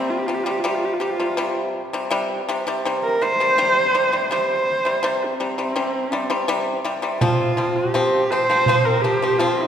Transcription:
Already playing: C3 G3 C4
0.10 F4
0.18 G4
0.26 C3 G3 F4
0.34 G4
0.43 C3 G3 F4
0.51 G4
0.60 F4
0.64 C3 G3
0.68 G4
0.75 F4
0.85 G4
0.93 F4
1.00 C3 G3 G4
1.10 F4
1.20 C3 G3
1.37 C3 G3
1.93 C3 G3
2.11 C3 G3
2.49 C3 G3
2.67 C3 G3
2.85 C3 G3
3.03 A#4
3.22 C3 G3 C5
3.40 C3 G3
3.58 C3 G3
3.95 C3 G3
4.12 C3 G3
4.31 C3 G3 C5
4.85 C3 G3
5.03 C3 G3
5.25 C4
5.40 C3 G3
5.58 C3 G3
5.76 C3 G3 C#4
5.90 C4
6.05 C#4
6.12 C3 G3
6.19 C4
6.30 C3 G3
6.48 C3 G3
6.84 C3 G3
7.02 C3 G3
7.19 F3 C4 F4, frame drum
7.57 F3 C4, frame drum
7.76 G4, frame drum
7.94 F3 C4, frame drum
8.30 F3 C4 C5, frame drum
8.50 F3 C4
8.66 F3 C4, frame drum
8.85 A#4
9.01 F3 C4 G4
9.22 F3 C4
9.38 F3 C4 F4, frame drum
9.57 D#4

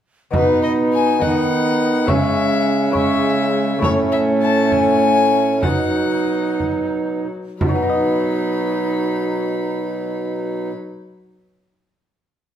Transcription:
0.31 B2 B3 D#4 D#5, frame drum
0.35 B3 D#4 B4
0.63 D#5
0.93 G#5
1.19 D#3 B3 D#4 D#5 F#5, frame drum
1.23 D#4
2.05 C#3 G#3 C#4 E4 C#5 E5, frame drum
2.90 G#3 E4 C#5
2.94 G#3 C#4 E5, frame drum
3.78 A2 A3 E4 C#5, frame drum
3.83 C#4 C#5
4.12 E5
4.42 A5
4.71 G#5, frame drum
5.61 B2 F#3 D#4 F4 D#5 F#5, frame drum
5.69 D#4
6.60 frame drum
7.61 B2 F#3 F4 B5, frame drum
7.67 F#3 D#4
7.75 B3
7.82 D#4
7.89 D#5

